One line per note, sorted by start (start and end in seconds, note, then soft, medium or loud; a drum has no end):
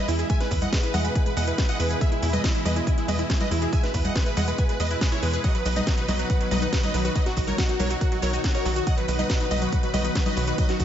0.00 5.40 B2 medium
0.00 5.40 E3 medium
0.00 5.40 G#3 medium
0.00 5.40 E4 medium
0.00 5.40 G#4 medium
0.08 0.24 E2 medium
0.08 0.13 G#3 medium
0.08 0.17 E4 medium
0.08 open hi-hat loud
0.08 shaker medium
0.19 0.28 E4 medium
0.19 0.26 G#4 medium
0.19 closed hi-hat medium
0.19 shaker soft
0.30 0.37 G#3 medium
0.30 0.39 E5 medium
0.30 0.39 G#5 loud
0.30 kick loud
0.30 closed hi-hat medium
0.30 shaker soft
0.40 0.47 G#3 medium
0.40 0.49 B4 medium
0.40 snare soft
0.40 closed hi-hat medium
0.51 0.67 E2 loud
0.51 0.60 B4 medium
0.51 0.56 E5 medium
0.51 kick medium
0.51 open hi-hat loud
0.51 shaker medium
0.62 0.69 E4 medium
0.62 0.71 D#5 medium
0.62 0.71 F#5 loud
0.62 0.71 F#5 medium
0.62 closed hi-hat medium
0.62 high conga medium
0.62 shaker soft
0.72 0.77 G#3 loud
0.72 0.81 B4 medium
0.72 0.82 B4 medium
0.72 kick loud
0.72 snare loud
0.72 closed hi-hat medium
0.72 shaker soft
0.83 0.88 E4 medium
0.83 0.92 B4 medium
0.83 closed hi-hat medium
0.94 1.10 E2 medium
0.94 0.97 G#3 medium
0.94 1.03 D#5 medium
0.94 1.03 F#5 medium
0.94 open hi-hat loud
0.94 high conga medium
0.94 shaker medium
1.05 1.07 G#3 medium
1.05 1.14 B4 medium
1.05 closed hi-hat medium
1.05 shaker soft
1.15 1.24 B4 medium
1.15 1.22 G#5 medium
1.15 kick loud
1.15 closed hi-hat medium
1.15 shaker soft
1.26 1.33 G#3 medium
1.26 1.35 B4 medium
1.26 closed hi-hat medium
1.37 1.53 E2 medium
1.37 1.44 G#3 medium
1.37 1.46 D#5 medium
1.37 1.46 F#5 medium
1.37 open hi-hat loud
1.37 shaker medium
1.47 1.55 E4 medium
1.47 1.56 B4 medium
1.47 closed hi-hat medium
1.47 shaker soft
1.58 1.63 G#3 loud
1.58 1.67 B4 medium
1.58 kick loud
1.58 snare loud
1.58 closed hi-hat medium
1.58 shaker soft
1.69 1.74 E4 medium
1.69 1.78 D#5 medium
1.69 1.78 F#5 loud
1.69 1.78 F#5 medium
1.69 closed hi-hat medium
1.79 1.96 E2 medium
1.79 1.84 G#3 medium
1.79 1.89 B4 medium
1.79 open hi-hat loud
1.79 shaker medium
1.90 1.97 G#4 medium
1.90 1.99 B4 medium
1.90 closed hi-hat medium
1.90 shaker soft
2.01 2.08 G#3 medium
2.01 2.10 G#4 medium
2.01 2.10 E5 loud
2.01 kick loud
2.01 closed hi-hat medium
2.01 shaker soft
2.12 2.19 G#3 medium
2.12 2.21 E4 medium
2.12 closed hi-hat medium
2.22 2.38 E2 loud
2.22 2.31 E4 medium
2.22 2.27 E5 medium
2.22 open hi-hat loud
2.22 shaker medium
2.33 2.40 E4 medium
2.33 2.42 B4 medium
2.33 2.42 D#5 medium
2.33 2.42 D#5 loud
2.33 closed hi-hat medium
2.33 high conga medium
2.33 shaker soft
2.44 2.49 G#3 loud
2.44 2.53 E4 medium
2.44 kick loud
2.44 snare loud
2.44 closed hi-hat medium
2.44 shaker soft
2.55 2.59 E4 medium
2.55 2.64 E4 medium
2.55 closed hi-hat medium
2.65 2.81 E2 medium
2.65 2.68 G#3 medium
2.65 2.74 B4 medium
2.65 2.74 D#5 loud
2.65 2.74 D#5 medium
2.65 open hi-hat loud
2.65 high conga medium
2.65 shaker medium
2.76 2.79 G#3 medium
2.76 2.85 E4 medium
2.76 closed hi-hat medium
2.76 shaker soft
2.87 2.96 E4 medium
2.87 2.94 G#5 medium
2.87 kick loud
2.87 closed hi-hat medium
2.87 shaker soft
2.97 3.05 G#3 medium
2.97 3.07 E4 medium
2.97 closed hi-hat medium
3.08 3.24 E2 medium
3.08 3.15 G#3 medium
3.08 3.17 B4 medium
3.08 3.17 D#5 medium
3.08 open hi-hat loud
3.08 high conga medium
3.08 shaker medium
3.19 3.26 E4 medium
3.19 3.28 E4 medium
3.19 closed hi-hat medium
3.19 shaker soft
3.29 3.34 G#3 loud
3.29 3.39 E4 medium
3.29 kick loud
3.29 snare loud
3.29 closed hi-hat medium
3.29 shaker soft
3.40 3.45 E4 medium
3.40 3.49 B4 medium
3.40 3.49 D#5 medium
3.40 3.49 D#5 loud
3.40 closed hi-hat medium
3.40 high conga medium
3.51 3.67 E2 medium
3.51 3.56 G#3 medium
3.51 3.60 E4 medium
3.51 open hi-hat loud
3.51 shaker medium
3.62 3.71 E4 medium
3.62 3.69 G#4 medium
3.62 closed hi-hat medium
3.62 shaker soft
3.72 3.80 G#3 medium
3.72 3.81 E5 medium
3.72 3.81 G#5 loud
3.72 3.82 G#5 loud
3.72 kick loud
3.72 closed hi-hat medium
3.72 shaker soft
3.83 3.90 G#3 medium
3.83 3.92 B4 medium
3.83 snare soft
3.83 closed hi-hat soft
3.94 4.10 E2 loud
3.94 4.03 B4 medium
3.94 3.99 E5 medium
3.94 kick medium
3.94 open hi-hat loud
3.94 shaker medium
4.05 4.12 E4 medium
4.05 4.14 D#5 medium
4.05 4.14 F#5 medium
4.05 4.14 F#5 loud
4.05 closed hi-hat soft
4.05 high conga medium
4.05 shaker soft
4.15 4.20 G#3 loud
4.15 4.24 B4 medium
4.15 kick loud
4.15 snare loud
4.15 closed hi-hat medium
4.15 shaker soft
4.26 4.31 E4 medium
4.26 4.35 B4 medium
4.26 closed hi-hat medium
4.37 4.53 E2 loud
4.37 4.40 G#3 medium
4.37 4.46 D#5 medium
4.37 4.46 F#5 medium
4.37 open hi-hat loud
4.37 high conga medium
4.37 shaker medium
4.48 4.51 G#3 medium
4.48 4.57 B4 medium
4.48 closed hi-hat soft
4.48 shaker soft
4.58 4.67 B4 medium
4.58 4.65 G#5 medium
4.58 kick loud
4.58 closed hi-hat medium
4.58 shaker soft
4.69 4.76 G#3 medium
4.69 4.78 B4 medium
4.69 closed hi-hat soft
4.80 4.96 E2 medium
4.80 4.87 G#3 medium
4.80 4.89 B4 medium
4.80 4.89 D#5 loud
4.80 4.89 D#5 medium
4.80 open hi-hat loud
4.80 shaker medium
4.91 4.98 E4 medium
4.91 4.99 B4 medium
4.91 5.00 B4 medium
4.91 closed hi-hat medium
4.91 shaker soft
5.01 5.06 G#3 loud
5.01 5.10 B4 medium
5.01 kick loud
5.01 snare loud
5.01 closed hi-hat medium
5.01 shaker soft
5.12 5.21 E4 medium
5.12 5.17 E4 medium
5.12 5.21 C#5 medium
5.12 closed hi-hat soft
5.23 5.38 E2 medium
5.23 5.27 G#3 medium
5.23 5.31 B4 medium
5.23 5.32 B4 medium
5.23 open hi-hat loud
5.23 shaker medium
5.33 5.40 G#4 medium
5.33 5.42 B4 medium
5.33 closed hi-hat soft
5.33 shaker soft
5.44 10.85 B2 medium
5.44 10.85 D#3 medium
5.44 5.51 F#3 medium
5.44 10.85 F#3 medium
5.44 10.85 D#4 medium
5.44 10.85 F#4 medium
5.44 5.53 D#5 medium
5.44 5.53 F#5 loud
5.44 kick loud
5.44 closed hi-hat medium
5.44 shaker soft
5.55 5.62 F#3 medium
5.55 5.64 B4 medium
5.55 closed hi-hat medium
5.65 5.81 B1 loud
5.65 5.74 B4 medium
5.65 5.70 D#5 medium
5.65 open hi-hat loud
5.65 shaker medium
5.76 5.83 D#4 medium
5.76 5.85 B4 medium
5.76 5.85 D#5 medium
5.76 5.85 D#5 loud
5.76 closed hi-hat medium
5.76 high conga medium
5.76 shaker soft
5.87 5.92 F#3 loud
5.87 5.96 B4 medium
5.87 kick loud
5.87 snare loud
5.87 closed hi-hat medium
5.98 6.02 D#4 medium
5.98 6.06 B4 medium
5.98 6.07 B4 medium
5.98 closed hi-hat medium
6.08 6.24 B1 medium
6.08 6.11 F#3 medium
6.08 6.17 B4 medium
6.08 6.17 D#5 medium
6.08 6.17 D#5 loud
6.08 open hi-hat loud
6.08 high conga medium
6.08 shaker medium
6.19 6.22 F#3 medium
6.19 6.28 B4 medium
6.19 closed hi-hat medium
6.19 shaker soft
6.30 6.39 B4 medium
6.30 6.37 F#5 medium
6.30 kick loud
6.30 closed hi-hat medium
6.30 shaker soft
6.40 6.48 F#3 medium
6.40 6.49 B4 medium
6.40 6.50 B4 medium
6.40 closed hi-hat soft
6.51 6.67 B1 medium
6.51 6.58 F#3 medium
6.51 6.60 B4 medium
6.51 6.60 D#5 loud
6.51 open hi-hat loud
6.51 high conga medium
6.51 shaker medium
6.62 6.69 D#4 medium
6.62 6.71 B4 medium
6.62 closed hi-hat medium
6.62 shaker soft
6.72 6.77 F#3 loud
6.72 6.81 B4 medium
6.72 6.82 B4 medium
6.72 kick loud
6.72 snare loud
6.72 closed hi-hat medium
6.72 shaker soft
6.83 6.88 D#4 medium
6.83 6.92 B4 medium
6.83 6.92 D#5 loud
6.83 closed hi-hat medium
6.83 high conga medium
6.94 7.10 B1 medium
6.94 6.99 F#3 medium
6.94 7.03 B4 medium
6.94 open hi-hat loud
6.94 shaker medium
7.05 7.12 F#4 medium
7.05 7.14 B4 medium
7.05 closed hi-hat medium
7.05 shaker soft
7.15 7.22 F#3 medium
7.15 7.24 B4 medium
7.15 7.24 D#5 loud
7.15 kick loud
7.15 closed hi-hat medium
7.15 shaker soft
7.26 7.33 F#3 medium
7.26 7.35 F#4 medium
7.26 snare soft
7.26 closed hi-hat medium
7.37 7.53 B1 loud
7.37 7.46 F#4 medium
7.37 7.42 D#5 medium
7.37 kick medium
7.37 open hi-hat loud
7.37 shaker medium
7.47 7.55 D#4 medium
7.47 7.56 A#4 medium
7.47 7.56 C#5 medium
7.47 7.57 C#5 loud
7.47 closed hi-hat medium
7.47 high conga medium
7.47 shaker soft
7.58 7.63 F#3 loud
7.58 7.67 F#4 medium
7.58 kick loud
7.58 snare loud
7.58 closed hi-hat medium
7.58 shaker soft
7.69 7.74 D#4 medium
7.69 7.78 F#4 medium
7.69 closed hi-hat medium
7.79 7.96 B1 medium
7.79 7.83 F#3 medium
7.79 7.89 A#4 medium
7.79 7.88 C#5 medium
7.79 7.89 C#5 medium
7.79 open hi-hat loud
7.79 high conga medium
7.79 shaker medium
7.90 7.93 F#3 medium
7.90 7.99 F#4 medium
7.90 closed hi-hat medium
7.90 shaker soft
8.01 8.10 F#4 medium
8.01 8.08 F#5 medium
8.01 kick loud
8.01 closed hi-hat medium
8.01 shaker soft
8.12 8.19 F#3 medium
8.12 8.21 F#4 medium
8.12 closed hi-hat medium
8.22 8.38 B1 medium
8.22 8.30 F#3 medium
8.22 8.31 A#4 medium
8.22 8.31 C#5 loud
8.22 8.31 C#5 medium
8.22 open hi-hat loud
8.22 shaker medium
8.33 8.40 D#4 medium
8.33 8.42 F#4 medium
8.33 closed hi-hat medium
8.33 shaker soft
8.44 8.49 F#3 loud
8.44 8.53 F#4 medium
8.44 kick loud
8.44 snare loud
8.44 closed hi-hat medium
8.44 shaker soft
8.54 8.59 D#4 medium
8.54 8.63 A#4 medium
8.54 8.63 C#5 medium
8.54 8.64 C#5 loud
8.54 closed hi-hat medium
8.65 8.81 B1 medium
8.65 8.70 F#3 medium
8.65 8.74 F#4 medium
8.65 open hi-hat loud
8.65 shaker medium
8.76 8.85 F#4 medium
8.76 8.83 F#4 medium
8.76 8.85 F#4 medium
8.76 closed hi-hat medium
8.76 shaker soft
8.87 8.94 F#3 medium
8.87 8.96 D#5 medium
8.87 8.96 F#5 loud
8.87 kick loud
8.87 closed hi-hat medium
8.87 shaker soft
8.97 9.05 F#3 medium
8.97 9.06 B4 medium
8.97 closed hi-hat medium
9.08 9.24 B1 loud
9.08 9.17 B4 medium
9.08 9.13 D#5 medium
9.08 open hi-hat loud
9.08 shaker medium
9.19 9.26 D#4 medium
9.19 9.28 B4 medium
9.19 9.28 D#5 medium
9.19 9.28 D#5 loud
9.19 closed hi-hat medium
9.19 high conga medium
9.19 shaker soft
9.29 9.34 F#3 loud
9.29 9.38 B4 medium
9.29 9.39 B4 medium
9.29 kick loud
9.29 snare loud
9.29 closed hi-hat medium
9.29 shaker soft
9.40 9.45 D#4 medium
9.40 9.49 B4 medium
9.40 closed hi-hat medium
9.51 9.67 B1 loud
9.51 9.54 F#3 medium
9.51 9.60 B4 medium
9.51 9.60 D#5 medium
9.51 9.60 D#5 loud
9.51 open hi-hat loud
9.51 high conga medium
9.51 shaker medium
9.62 9.65 F#3 medium
9.62 9.71 B4 medium
9.62 closed hi-hat medium
9.62 shaker soft
9.72 9.81 B4 medium
9.72 9.80 F#5 medium
9.72 kick loud
9.72 closed hi-hat medium
9.72 shaker soft
9.83 9.90 F#3 medium
9.83 9.92 B4 medium
9.83 closed hi-hat medium
9.94 10.10 B1 medium
9.94 10.01 F#3 medium
9.94 10.03 B4 medium
9.94 10.03 D#5 loud
9.94 open hi-hat loud
9.94 high conga medium
9.94 shaker medium
10.04 10.12 D#4 medium
10.04 10.13 B4 medium
10.04 10.14 B4 medium
10.04 closed hi-hat medium
10.04 shaker soft
10.15 10.20 F#3 loud
10.15 10.24 B4 medium
10.15 kick loud
10.15 snare loud
10.15 closed hi-hat medium
10.15 shaker soft
10.26 10.31 D#4 medium
10.26 10.35 B4 medium
10.26 10.35 D#5 medium
10.26 closed hi-hat medium
10.26 high conga medium
10.37 10.53 B1 medium
10.37 10.42 F#3 medium
10.37 10.46 B4 medium
10.37 open hi-hat loud
10.37 shaker medium
10.47 10.55 F#4 medium
10.47 10.56 B4 medium
10.47 10.57 B4 medium
10.47 closed hi-hat medium
10.47 shaker soft
10.58 10.65 F#3 medium
10.58 10.67 B4 medium
10.58 10.67 D#5 loud
10.58 kick loud
10.58 closed hi-hat medium
10.58 shaker soft
10.69 10.76 F#3 medium
10.69 10.78 F#4 medium
10.69 snare soft
10.69 closed hi-hat medium
10.80 10.85 B1 loud
10.80 10.85 F#4 medium
10.80 10.84 D#5 medium
10.80 kick medium
10.80 open hi-hat loud
10.80 shaker medium